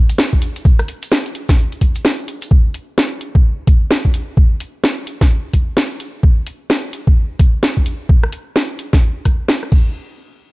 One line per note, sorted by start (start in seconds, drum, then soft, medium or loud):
0.09 closed hi-hat medium
0.09 shaker medium
0.18 snare loud
0.18 shaker medium
0.33 kick medium
0.33 shaker soft
0.42 open hi-hat medium
0.56 closed hi-hat medium
0.56 shaker medium
0.65 kick loud
0.65 shaker medium
0.79 cross-stick soft
0.79 closed hi-hat soft
0.79 shaker soft
0.88 open hi-hat loud
1.03 closed hi-hat medium
1.03 shaker medium
1.11 snare loud
1.11 shaker medium
1.26 closed hi-hat soft
1.26 shaker soft
1.35 open hi-hat medium
1.49 kick loud
1.49 snare medium
1.49 closed hi-hat medium
1.49 shaker medium
1.58 shaker medium
1.72 closed hi-hat soft
1.72 shaker soft
1.81 kick medium
1.81 open hi-hat loud
1.95 closed hi-hat medium
1.95 shaker medium
2.05 snare loud
2.05 shaker medium
2.18 shaker soft
2.28 open hi-hat medium
2.42 closed hi-hat medium
2.42 shaker medium
2.51 kick loud
2.74 open hi-hat loud
2.98 snare loud
3.21 open hi-hat medium
3.35 kick loud
3.67 kick loud
3.67 open hi-hat medium
3.91 snare loud
4.05 kick medium
4.14 open hi-hat medium
4.37 kick loud
4.60 open hi-hat loud
4.84 snare loud
5.07 open hi-hat medium
5.21 kick loud
5.21 snare medium
5.53 kick medium
5.53 open hi-hat loud
5.77 snare loud
6.00 open hi-hat medium
6.23 kick loud
6.47 open hi-hat loud
6.70 snare loud
6.93 open hi-hat medium
7.07 kick loud
7.39 kick loud
7.39 open hi-hat loud
7.63 snare loud
7.77 kick medium
7.86 open hi-hat medium
8.09 kick loud
8.23 cross-stick soft
8.33 open hi-hat loud
8.56 snare loud
8.79 open hi-hat medium
8.93 kick loud
8.93 snare medium
9.25 kick medium
9.25 cross-stick soft
9.25 open hi-hat loud
9.48 snare loud
9.63 cross-stick soft
9.72 kick loud
9.72 crash medium